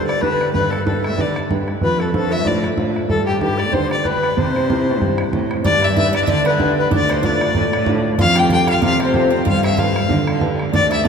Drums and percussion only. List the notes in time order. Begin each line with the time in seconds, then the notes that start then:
0.09 bodhran
0.23 bodhran
0.41 bodhran
0.55 bodhran
0.73 bodhran
0.87 bodhran
1.04 bodhran
1.18 bodhran
1.36 bodhran
1.51 bodhran
1.68 bodhran
1.81 bodhran
2.00 bodhran
2.14 bodhran
2.32 bodhran
2.46 bodhran
2.64 bodhran
2.78 bodhran
2.96 bodhran
3.10 bodhran
3.27 bodhran
3.41 bodhran
3.60 bodhran
3.74 bodhran
3.91 bodhran
4.05 bodhran
4.23 bodhran
4.38 bodhran
4.56 bodhran
4.70 bodhran
5.01 bodhran
5.18 bodhran
5.33 bodhran
5.51 bodhran
5.65 bodhran
5.74 bodhran
5.82 bodhran
5.97 bodhran
6.15 bodhran
6.22 bodhran
6.28 bodhran
6.46 bodhran
6.60 bodhran
6.92 bodhran
7.01 bodhran
7.10 bodhran
7.24 bodhran
7.41 bodhran
7.49 bodhran
7.55 bodhran
7.73 bodhran
7.86 bodhran
8.19 bodhran
8.27 bodhran
8.36 bodhran
8.50 bodhran
8.67 bodhran
8.75 bodhran
8.82 bodhran
9.00 bodhran
9.14 bodhran
9.47 bodhran
9.56 bodhran
9.64 bodhran
9.78 bodhran
9.96 bodhran
10.03 bodhran
10.10 bodhran
10.27 bodhran
10.41 bodhran
10.59 bodhran
10.74 bodhran
10.83 bodhran
10.92 bodhran